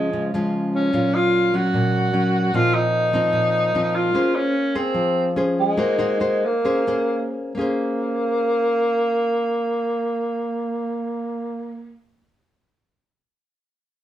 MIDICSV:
0, 0, Header, 1, 3, 480
1, 0, Start_track
1, 0, Key_signature, -5, "minor"
1, 0, Tempo, 400802
1, 1126, Time_signature, 4, 2, 24, 8
1, 5927, Tempo, 422238
1, 7847, Tempo, 455581
1, 8807, Tempo, 470588
1, 15419, End_track
2, 0, Start_track
2, 0, Title_t, "Nylon-string guitar"
2, 0, Program_c, 0, 24
2, 0, Note_on_c, 0, 49, 63
2, 0, Note_on_c, 0, 53, 53
2, 0, Note_on_c, 0, 56, 50
2, 0, Note_on_c, 0, 61, 56
2, 142, Note_off_c, 0, 49, 0
2, 159, Note_on_c, 0, 49, 67
2, 363, Note_off_c, 0, 53, 0
2, 368, Note_off_c, 0, 56, 0
2, 370, Note_off_c, 0, 61, 0
2, 408, Note_on_c, 0, 53, 63
2, 416, Note_on_c, 0, 56, 64
2, 421, Note_on_c, 0, 61, 67
2, 1088, Note_off_c, 0, 53, 0
2, 1092, Note_off_c, 0, 56, 0
2, 1094, Note_off_c, 0, 61, 0
2, 1098, Note_off_c, 0, 49, 0
2, 1112, Note_on_c, 0, 46, 65
2, 1120, Note_on_c, 0, 61, 52
2, 1121, Note_on_c, 0, 54, 53
2, 1126, Note_on_c, 0, 65, 54
2, 1802, Note_off_c, 0, 61, 0
2, 1804, Note_off_c, 0, 54, 0
2, 1807, Note_off_c, 0, 65, 0
2, 1842, Note_on_c, 0, 54, 51
2, 1848, Note_on_c, 0, 61, 51
2, 2055, Note_off_c, 0, 46, 0
2, 2081, Note_on_c, 0, 46, 66
2, 2524, Note_off_c, 0, 54, 0
2, 2528, Note_off_c, 0, 61, 0
2, 2556, Note_on_c, 0, 54, 51
2, 2562, Note_on_c, 0, 61, 54
2, 3002, Note_off_c, 0, 54, 0
2, 3002, Note_off_c, 0, 61, 0
2, 3018, Note_off_c, 0, 46, 0
2, 3038, Note_on_c, 0, 46, 71
2, 3043, Note_on_c, 0, 53, 51
2, 3048, Note_on_c, 0, 63, 58
2, 3049, Note_on_c, 0, 60, 56
2, 3723, Note_off_c, 0, 53, 0
2, 3724, Note_off_c, 0, 60, 0
2, 3727, Note_off_c, 0, 63, 0
2, 3751, Note_on_c, 0, 53, 58
2, 3758, Note_on_c, 0, 60, 59
2, 3770, Note_on_c, 0, 63, 63
2, 3971, Note_off_c, 0, 46, 0
2, 3986, Note_on_c, 0, 46, 68
2, 4438, Note_off_c, 0, 53, 0
2, 4440, Note_off_c, 0, 60, 0
2, 4447, Note_off_c, 0, 63, 0
2, 4488, Note_on_c, 0, 53, 50
2, 4490, Note_on_c, 0, 60, 53
2, 4493, Note_on_c, 0, 63, 61
2, 4926, Note_off_c, 0, 53, 0
2, 4926, Note_off_c, 0, 60, 0
2, 4928, Note_off_c, 0, 63, 0
2, 4929, Note_off_c, 0, 46, 0
2, 4960, Note_on_c, 0, 58, 64
2, 4966, Note_on_c, 0, 61, 56
2, 4969, Note_on_c, 0, 68, 59
2, 4973, Note_on_c, 0, 72, 56
2, 5439, Note_off_c, 0, 61, 0
2, 5443, Note_off_c, 0, 68, 0
2, 5444, Note_off_c, 0, 72, 0
2, 5691, Note_on_c, 0, 68, 55
2, 5696, Note_on_c, 0, 72, 60
2, 5902, Note_off_c, 0, 58, 0
2, 5921, Note_on_c, 0, 53, 68
2, 6359, Note_off_c, 0, 68, 0
2, 6360, Note_off_c, 0, 72, 0
2, 6398, Note_on_c, 0, 61, 52
2, 6407, Note_on_c, 0, 68, 55
2, 6414, Note_on_c, 0, 72, 63
2, 6840, Note_off_c, 0, 53, 0
2, 6850, Note_off_c, 0, 61, 0
2, 6856, Note_off_c, 0, 68, 0
2, 6856, Note_off_c, 0, 72, 0
2, 6864, Note_on_c, 0, 58, 69
2, 6869, Note_on_c, 0, 63, 48
2, 6874, Note_on_c, 0, 66, 55
2, 6881, Note_on_c, 0, 72, 56
2, 7069, Note_off_c, 0, 63, 0
2, 7072, Note_off_c, 0, 66, 0
2, 7075, Note_off_c, 0, 72, 0
2, 7106, Note_on_c, 0, 63, 61
2, 7113, Note_on_c, 0, 66, 63
2, 7114, Note_on_c, 0, 72, 66
2, 7311, Note_off_c, 0, 63, 0
2, 7313, Note_off_c, 0, 66, 0
2, 7315, Note_off_c, 0, 72, 0
2, 7349, Note_on_c, 0, 63, 53
2, 7356, Note_on_c, 0, 66, 56
2, 7362, Note_on_c, 0, 72, 62
2, 7668, Note_off_c, 0, 63, 0
2, 7672, Note_off_c, 0, 66, 0
2, 7674, Note_off_c, 0, 72, 0
2, 7820, Note_off_c, 0, 58, 0
2, 7854, Note_on_c, 0, 58, 63
2, 7857, Note_on_c, 0, 61, 56
2, 7861, Note_on_c, 0, 68, 58
2, 7866, Note_on_c, 0, 72, 61
2, 8049, Note_off_c, 0, 61, 0
2, 8049, Note_off_c, 0, 68, 0
2, 8053, Note_off_c, 0, 72, 0
2, 8094, Note_on_c, 0, 61, 65
2, 8100, Note_on_c, 0, 68, 57
2, 8102, Note_on_c, 0, 72, 65
2, 8774, Note_off_c, 0, 61, 0
2, 8776, Note_off_c, 0, 72, 0
2, 8777, Note_off_c, 0, 68, 0
2, 8786, Note_off_c, 0, 58, 0
2, 8806, Note_on_c, 0, 58, 55
2, 8833, Note_on_c, 0, 61, 59
2, 8846, Note_on_c, 0, 68, 60
2, 8868, Note_on_c, 0, 72, 64
2, 13327, Note_off_c, 0, 58, 0
2, 13354, Note_off_c, 0, 61, 0
2, 13367, Note_off_c, 0, 68, 0
2, 13389, Note_off_c, 0, 72, 0
2, 15419, End_track
3, 0, Start_track
3, 0, Title_t, "Tenor saxophone"
3, 0, Program_c, 1, 66
3, 0, Note_on_c, 1, 56, 76
3, 430, Note_off_c, 1, 56, 0
3, 899, Note_on_c, 1, 61, 85
3, 1376, Note_on_c, 1, 65, 96
3, 1394, Note_off_c, 1, 61, 0
3, 1860, Note_on_c, 1, 66, 88
3, 1878, Note_off_c, 1, 65, 0
3, 3061, Note_on_c, 1, 65, 97
3, 3079, Note_off_c, 1, 66, 0
3, 3286, Note_on_c, 1, 63, 97
3, 3304, Note_off_c, 1, 65, 0
3, 4733, Note_on_c, 1, 65, 89
3, 4751, Note_off_c, 1, 63, 0
3, 5214, Note_on_c, 1, 61, 86
3, 5232, Note_off_c, 1, 65, 0
3, 5701, Note_on_c, 1, 60, 75
3, 5719, Note_off_c, 1, 61, 0
3, 6319, Note_off_c, 1, 60, 0
3, 6661, Note_on_c, 1, 56, 84
3, 7641, Note_on_c, 1, 58, 70
3, 7658, Note_off_c, 1, 56, 0
3, 8582, Note_off_c, 1, 58, 0
3, 8834, Note_on_c, 1, 58, 80
3, 13314, Note_off_c, 1, 58, 0
3, 15419, End_track
0, 0, End_of_file